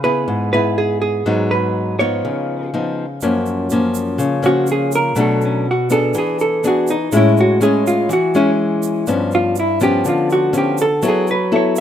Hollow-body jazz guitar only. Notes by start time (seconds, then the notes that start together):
0.04 B4
0.53 B4
0.78 G#4
1.02 G#4
1.51 B4
1.99 C#5
4.46 F#4
4.72 G#4
4.95 A#4
5.21 A4
5.45 C#4
5.71 F#4
5.92 A4
6.18 G#4
6.41 A4
6.68 F#4
6.91 D#4
7.17 E4
7.40 F#4
7.63 G#4
7.87 F4
8.13 F#4
8.36 C#4
9.35 F4
9.60 E4
9.83 G4
10.09 F4
10.32 F#4
10.58 G4
10.82 A4
11.08 G#4
11.31 B4
11.56 C#5